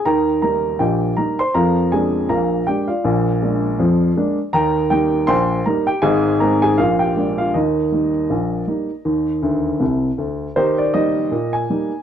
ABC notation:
X:1
M:2/4
L:1/16
Q:"Swing 16ths" 1/4=80
K:Eb
V:1 name="Upright piano"
[Bgb]2 [Bb]2 [Geg]2 [Bb] [cc'] | [Bfb]2 [Aa]2 [Bfb]2 [Gg] [Fdf]- | [Fdf]6 z2 | [Bgb]2 [Gg]2 [cgc']2 [Bb] [Gg] |
[Aea]2 [Bb] [Aa] [Ff] [Gg]2 [Ff] | [EBe]8- | [EBe]6 z2 | [EGc] d e3 a3 |]
V:2 name="Upright piano" clef=bass
[E,,E,]2 [G,B,E]2 [B,,,B,,]2 [G,B,E]2 | [F,,F,]2 [A,B,D]2 [B,,,B,,]2 [A,B,D]2 | [B,,,B,,]2 [A,B,D]2 [F,,F,]2 [A,B,D]2 | [E,,E,]2 [G,B,E]2 [B,,,B,,]2 [G,B,E]2 |
[A,,,A,,]2 [A,CE]2 [B,,,B,,]2 [A,B,D]2 | [E,,E,]2 [G,B,E]2 [B,,,B,,]2 [G,B,E]2 | [E,,E,]2 [D,,D,]2 [C,,C,]2 [D,,D,]2 | E,2 [G,B,E]2 B,,2 [G,B,E]2 |]